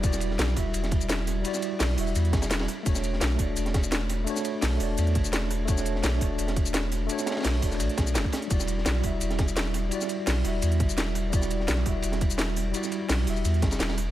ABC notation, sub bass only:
X:1
M:4/4
L:1/8
Q:"Swing 16ths" 1/4=170
K:Edor
V:1 name="Sub bass" clef=bass
E,,,2 B,,, E,,, E,,,4 | z2 B,,, E,,, E,, E,,,2 z | E,,,2 B,,, E,,, E,,,4 | z2 B,,, E,,, E,, E,,,3 |
E,,,2 B,,, E,,, E,,,4 | z2 B,,, E,,, B,,, B,,, E,,, z | E,,,2 B,,, E,,, E,,,4 | z2 B,,, E,,, E,, E,,,3 |
E,,,2 B,,, E,,, E,,,4 | z2 B,,, E,,, E,, E,,, E,,,2 |]